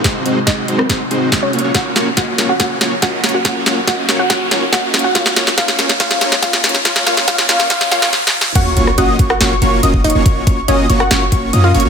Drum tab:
CC |------------------------------------------------------------------------------------------------|------------------------------------------------------------------------------------------------|------------------------------------------------------------------------------------------------|------------------------------------------------------------------------------------------------|
HH |x-----------x-----------x-----------x-----------x-----------x-----------x-----------x--x--------|x-----------x-----------x-----------x-----------x-----------x-----------x-----------o--x--------|x-----------x-----------x-----------x-----------x-----------x-----------x-----------o--x--------|x-----------x-----------x-----------x-----------x-----------x-----------x-----------o--x--------|
SD |o-----------------------o-----------------r-----o-----------------------o-----------------------|o-----------o-----------o-----------o-----------o-----------o-----------o-----------o-----------|o-----------o-----------o-----------o-----------o-----------o-----------o-----------o-----------|o-----o-----o-----o-----o-----o-----o-----o-----o-----o-----o-----o-----o-----o-----o-----o-----|
BD |o-----------------------o-----------------------o-----------------------o-----------------------|o-----------------------o-----------------------o-----------------------o-----------------------|o-----------------------o-----------------------o-----------------------o-----------------------|o-----------------------o-----------------------o-----------------------o-----------------------|

CC |------------------------------------------------------------------------------------------------|x-----------------------------------------------------------------------------------------------|------------------------------------------------------------------------------------------------|
HH |x-----------x-----------x-----------x-----------x-----------x-----------------------------------|x-----------x-----------x-----------x-----------x-----------x-----------x-----------o--x--------|x-----------x-----------x-----------x-----------x-----------x-----------x-----------o--x--------|
SD |o-----o-----o-----o-----o-----o-----o-----o-----o-----o-----o-----o-----o-------o-------o-------|------------------r-----------------------r-----o-----------------------------------------------|------------------------------------------r-----o-----------------------------------------------|
BD |o-----------------------o-----------------------o-----------------------------------------------|o-----------------------------------o-----------------------------------------o-----------------|o-----------o-----------------------------------------------o-----------------------------------|